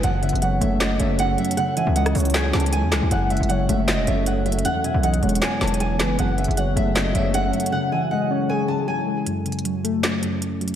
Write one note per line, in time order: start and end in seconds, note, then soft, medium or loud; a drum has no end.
0.03 0.32 F#1 loud
0.03 0.98 F#2 loud
0.03 1.56 F#3 medium
0.03 1.56 C#4 medium
0.03 1.56 A4 medium
0.03 0.21 F#5 medium
0.03 0.40 F#5 loud
0.03 closed hi-hat medium
0.23 1.19 C#3 medium
0.23 0.40 E5 medium
0.23 closed hi-hat medium
0.29 0.60 F#1 loud
0.29 closed hi-hat medium
0.35 closed hi-hat medium
0.42 1.37 F#3 medium
0.42 0.78 C#5 medium
0.42 0.59 F#5 medium
0.42 closed hi-hat medium
0.61 0.98 F#1 loud
0.61 1.57 A3 loud
0.61 0.78 E5 medium
0.61 closed hi-hat medium
0.80 1.57 C#4 medium
0.80 0.99 D#5 medium
0.80 0.98 D#5 medium
0.80 snare loud
0.80 clap loud
0.80 closed hi-hat medium
0.99 1.36 F#1 loud
0.99 1.57 F#2 medium
0.99 1.54 C#5 medium
0.99 1.17 E5 medium
0.99 closed hi-hat medium
1.19 1.36 F#5 loud
1.19 closed hi-hat medium
1.38 1.57 F#3 medium
1.38 1.55 E5 medium
1.38 closed hi-hat soft
1.45 closed hi-hat medium
1.51 closed hi-hat medium
1.57 3.10 C#3 medium
1.57 2.52 C#3 loud
1.57 3.10 G#3 medium
1.57 3.10 E4 medium
1.57 1.74 F#5 loud
1.57 closed hi-hat medium
1.76 2.73 E3 medium
1.76 1.95 E5 medium
1.76 1.94 G#5 medium
1.76 closed hi-hat medium
1.87 2.14 C#2 loud
1.96 2.91 G#3 medium
1.96 2.14 D#5 medium
1.96 2.32 F#5 medium
1.96 closed hi-hat medium
2.06 cross-stick loud
2.06 closed hi-hat soft
2.15 2.52 C#2 loud
2.15 3.11 C#4 loud
2.15 2.33 C#5 medium
2.15 closed hi-hat medium
2.15 open hi-hat medium
2.20 closed hi-hat medium
2.25 closed hi-hat medium
2.30 2.70 G#4 medium
2.30 closed hi-hat medium
2.34 3.11 C#5 medium
2.34 2.51 G#5 medium
2.34 snare loud
2.34 clap loud
2.34 closed hi-hat medium
2.53 2.84 C#2 loud
2.53 3.11 C#3 medium
2.53 2.70 A5 medium
2.53 snare medium
2.53 closed hi-hat soft
2.60 closed hi-hat medium
2.66 closed hi-hat medium
2.72 3.09 G#5 medium
2.72 closed hi-hat medium
2.83 2.93 E2 loud
2.92 3.02 C#2 loud
2.92 3.11 G#3 medium
2.92 cross-stick medium
2.92 snare loud
2.92 clap medium
2.92 closed hi-hat medium
3.02 3.10 C#2 loud
3.11 3.39 F#1 loud
3.11 4.06 F#2 medium
3.11 4.63 F#3 medium
3.11 4.63 C#4 medium
3.11 4.63 A4 loud
3.11 3.47 F#5 loud
3.11 3.29 F#5 medium
3.11 closed hi-hat medium
3.30 4.26 C#3 medium
3.30 3.47 E5 medium
3.30 closed hi-hat soft
3.37 3.68 F#1 loud
3.37 closed hi-hat soft
3.43 closed hi-hat medium
3.49 4.44 F#3 medium
3.49 3.86 C#5 medium
3.49 3.66 F#5 medium
3.49 closed hi-hat medium
3.69 4.00 F#1 loud
3.69 4.65 A3 loud
3.69 3.86 E5 medium
3.69 closed hi-hat medium
3.88 4.65 C#4 medium
3.88 4.05 D#5 medium
3.88 4.06 D#5 medium
3.88 snare loud
3.88 clap loud
3.88 closed hi-hat medium
3.98 4.07 E1 loud
4.07 4.63 F#1 loud
4.07 4.65 F#2 medium
4.07 4.62 C#5 medium
4.07 4.24 E5 medium
4.07 closed hi-hat medium
4.26 4.44 F#5 medium
4.26 closed hi-hat medium
4.45 4.65 F#3 medium
4.45 4.63 E5 medium
4.45 closed hi-hat soft
4.52 closed hi-hat medium
4.59 closed hi-hat medium
4.65 5.60 E2 medium
4.65 6.17 E3 medium
4.65 6.17 B3 medium
4.65 6.17 G#4 loud
4.65 4.82 F#5 loud
4.65 closed hi-hat medium
4.84 5.80 B2 medium
4.84 5.02 E5 medium
4.84 5.01 G#5 medium
4.84 closed hi-hat medium
4.94 5.21 B1 loud
5.03 5.98 E3 medium
5.03 5.22 D#5 medium
5.03 5.40 F#5 medium
5.03 closed hi-hat medium
5.14 closed hi-hat medium
5.23 5.41 E1 loud
5.23 6.19 G#3 loud
5.23 5.96 C#5 medium
5.23 closed hi-hat soft
5.29 closed hi-hat medium
5.35 closed hi-hat medium
5.42 6.19 B3 medium
5.42 5.59 G#5 medium
5.42 snare loud
5.42 clap loud
5.42 closed hi-hat medium
5.61 6.01 E1 loud
5.61 6.19 E2 medium
5.61 5.79 A5 medium
5.61 snare medium
5.61 closed hi-hat soft
5.68 closed hi-hat medium
5.74 closed hi-hat medium
5.80 6.17 G#5 medium
5.80 closed hi-hat medium
5.99 6.18 F#1 loud
5.99 6.19 E3 medium
5.99 6.18 B4 medium
5.99 snare loud
5.99 clap medium
5.99 closed hi-hat medium
6.19 6.47 F#1 loud
6.19 7.13 F#2 medium
6.19 7.71 F#3 medium
6.19 7.71 C#4 medium
6.19 7.71 A4 medium
6.19 6.55 F#5 loud
6.19 6.36 F#5 medium
6.19 closed hi-hat medium
6.38 7.34 C#3 medium
6.38 6.55 E5 medium
6.38 closed hi-hat medium
6.44 6.75 F#1 loud
6.44 closed hi-hat medium
6.51 closed hi-hat medium
6.57 7.52 F#3 medium
6.57 6.93 C#5 medium
6.57 6.74 F#5 medium
6.57 closed hi-hat medium
6.76 7.13 F#1 loud
6.76 7.73 A3 loud
6.76 6.94 E5 medium
6.76 closed hi-hat medium
6.95 7.73 C#4 medium
6.95 7.14 D#5 medium
6.95 7.13 D#5 loud
6.95 snare loud
6.95 clap loud
6.95 closed hi-hat medium
7.14 7.52 F#1 loud
7.14 7.72 F#2 medium
7.14 7.69 C#5 medium
7.14 7.32 E5 medium
7.14 closed hi-hat medium
7.34 7.51 F#5 loud
7.34 closed hi-hat medium
7.53 7.73 F#3 medium
7.53 7.70 E5 medium
7.53 closed hi-hat soft
7.60 closed hi-hat medium
7.66 closed hi-hat medium
7.72 9.25 C#3 medium
7.72 8.67 C#3 loud
7.72 9.25 G#3 medium
7.72 9.25 E4 medium
7.72 7.90 F#5 loud
7.92 8.88 E3 medium
7.92 8.10 E5 medium
7.92 8.09 G#5 medium
8.11 9.06 G#3 medium
8.11 8.29 D#5 medium
8.11 8.47 F#5 medium
8.31 9.27 C#4 loud
8.31 8.49 C#5 medium
8.49 8.86 G#4 medium
8.49 9.26 C#5 medium
8.49 8.67 G#5 medium
8.68 9.26 C#3 medium
8.68 8.86 A5 medium
8.88 9.24 G#5 medium
9.07 9.26 G#3 medium
9.26 10.21 F#2 medium
9.26 closed hi-hat medium
9.46 10.42 C#3 medium
9.46 closed hi-hat soft
9.52 closed hi-hat soft
9.59 closed hi-hat soft
9.65 10.60 F#3 medium
9.65 closed hi-hat medium
9.84 10.75 A3 loud
9.84 closed hi-hat medium
10.03 10.75 C#4 medium
10.03 snare loud
10.03 clap loud
10.03 closed hi-hat medium
10.22 10.75 F#2 medium
10.22 closed hi-hat medium
10.42 closed hi-hat medium
10.61 10.75 F#3 medium
10.61 closed hi-hat soft
10.68 closed hi-hat medium